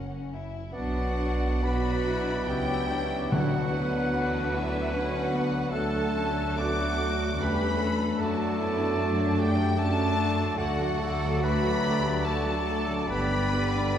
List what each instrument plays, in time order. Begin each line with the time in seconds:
Already playing: double bass section F#1, cello section F#2, violin section C#4 F#5, viola section A#4
0.32 violin section E4
0.73 double bass section B1, trombone section B2 F#3, viola section F#3 B3, bassoon B3, french horn section B3 D4, cello section D4, violin section D4 F#4 F#5, clarinet F#4, oboe D5, flute F#5
1.19 viola section D4
1.63 viola section F#3 D4, bassoon B3, violin section B3 F#4 B5, cello section F#4, clarinet B4, oboe D5, flute B5
2.08 violin section E4
2.48 double bass section C#2, viola section C#4, cello section E4, violin section E4 G5, clarinet G4, flute G5
2.90 cello section D4
3.31 double bass section D2, trombone section D3, timpani D3, viola section F#3 B3, bassoon B3, violin section D4 F#5, cello section F#4, clarinet F#4, oboe F#5, flute F#5
3.73 violin section D4, cello section B4
4.12 viola section E3 D4, violin section F#4
4.53 viola section F#3, clarinet E4, violin section E5, flute E5
4.92 bassoon B3, viola section C#4, clarinet F#4, violin section F#4 F#5, oboe F#5, flute F#5
5.33 viola section B3
5.71 double bass section D2, trombone section F#3, bassoon A3, viola section A3, french horn section A3 D4, violin section D4 F#4 A5, clarinet A4, cello section A4, oboe F#5, flute A5
6.15 viola section C#4
6.57 bassoon A3, viola section B3, cello section F#4, violin section A4 D6, clarinet D5, oboe F#5, flute D6
6.99 viola section A3
7.40 double bass section E2, viola section G3 A3, violin section C#4 B5, cello section G4, clarinet B4, flute B5
7.80 viola section A3, cello section A4
8.20 double bass section F#2, trombone section D3, viola section F#3 A3, bassoon A3, violin section D4 F#4 A5, cello section F#4, clarinet A4, oboe D5, flute A5
8.60 viola section B3, cello section E4
9.00 viola section F#3 A3, cello section D4
9.39 viola section A3, clarinet G4, violin section G5, flute G5
9.77 bassoon A3, viola section A3 D4, cello section C#4, violin section D4 F#4 A5, clarinet A4, oboe D5, flute A5
10.17 cello section D4
10.57 double bass section D2, viola section D3 A3, trombone section F#3, bassoon A3, french horn section A3 D4, cello section F#4, clarinet F#4, violin section F#4 A4 F#5, oboe D5, flute F#5
10.79 viola section F#3, violin section D4 F#4
11.00 viola section D3 A3, violin section F#4 A4, cello section A4
11.24 viola section F#3, violin section D4 F#4
11.43 viola section D3 A3, cello section F#4, violin section F#4 A4 B5, clarinet B4, flute B5
11.65 viola section F#3, violin section D4 F#4
11.84 viola section D3 A3, violin section F#4 A4, cello section G4
12.04 viola section F#3, violin section D4 F#4
12.24 viola section D3 A3, cello section F#4, violin section F#4 A4 A5, clarinet A4, flute A5
12.46 viola section F#3, violin section D4 F#4
12.66 viola section D3 A3, violin section F#4 A4, cello section A4
12.88 viola section F#3, violin section D4 F#4
13.08 double bass section G1, trombone section D3 G3, viola section D3 B3, bassoon G3, violin section B3 G4 B5, french horn section B3, cello section G4, clarinet B4, flute B5
13.31 viola section G3 D4, violin section D4 B4
13.53 viola section D3 B3, violin section B3 G4, cello section B4
13.76 viola section G3 D4, violin section D4 B4